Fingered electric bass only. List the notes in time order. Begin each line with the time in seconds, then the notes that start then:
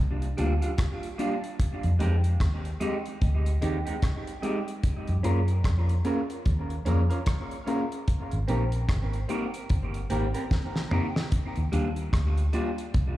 0.00 C2
0.39 D2
1.84 F2
2.01 F2
2.41 D#2
3.22 D2
3.63 D#2
5.09 F#2
5.25 F#2
5.65 F2
6.46 D#2
6.87 F2
8.33 G#1
8.49 A#1
8.89 G#1
9.71 G1
10.11 G#1
11.57 D#2
11.73 D#2
12.13 D2
12.95 C2